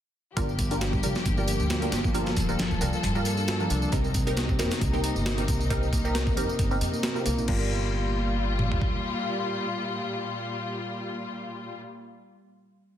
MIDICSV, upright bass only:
0, 0, Header, 1, 2, 480
1, 0, Start_track
1, 0, Key_signature, -2, "minor"
1, 0, Tempo, 444444
1, 399, Time_signature, 4, 2, 24, 8
1, 14014, End_track
2, 0, Start_track
2, 0, Title_t, "Upright bass"
2, 0, Program_c, 0, 32
2, 397, Note_on_c, 0, 31, 96
2, 1068, Note_off_c, 0, 31, 0
2, 1118, Note_on_c, 0, 36, 81
2, 1211, Note_off_c, 0, 36, 0
2, 1358, Note_on_c, 0, 31, 97
2, 1669, Note_off_c, 0, 31, 0
2, 1724, Note_on_c, 0, 38, 85
2, 2026, Note_off_c, 0, 38, 0
2, 2076, Note_on_c, 0, 31, 81
2, 2987, Note_off_c, 0, 31, 0
2, 3034, Note_on_c, 0, 36, 81
2, 3130, Note_off_c, 0, 36, 0
2, 3279, Note_on_c, 0, 43, 78
2, 3948, Note_off_c, 0, 43, 0
2, 3996, Note_on_c, 0, 36, 95
2, 4174, Note_off_c, 0, 36, 0
2, 4238, Note_on_c, 0, 36, 99
2, 4908, Note_off_c, 0, 36, 0
2, 4954, Note_on_c, 0, 41, 81
2, 5049, Note_off_c, 0, 41, 0
2, 5199, Note_on_c, 0, 36, 101
2, 5510, Note_off_c, 0, 36, 0
2, 5565, Note_on_c, 0, 31, 84
2, 5866, Note_off_c, 0, 31, 0
2, 5921, Note_on_c, 0, 36, 85
2, 6829, Note_off_c, 0, 36, 0
2, 6878, Note_on_c, 0, 41, 85
2, 6972, Note_off_c, 0, 41, 0
2, 7118, Note_on_c, 0, 31, 79
2, 7350, Note_off_c, 0, 31, 0
2, 7357, Note_on_c, 0, 41, 90
2, 7451, Note_off_c, 0, 41, 0
2, 7840, Note_on_c, 0, 36, 78
2, 7972, Note_off_c, 0, 36, 0
2, 7972, Note_on_c, 0, 34, 95
2, 8048, Note_off_c, 0, 34, 0
2, 8081, Note_on_c, 0, 31, 96
2, 9477, Note_off_c, 0, 31, 0
2, 14014, End_track
0, 0, End_of_file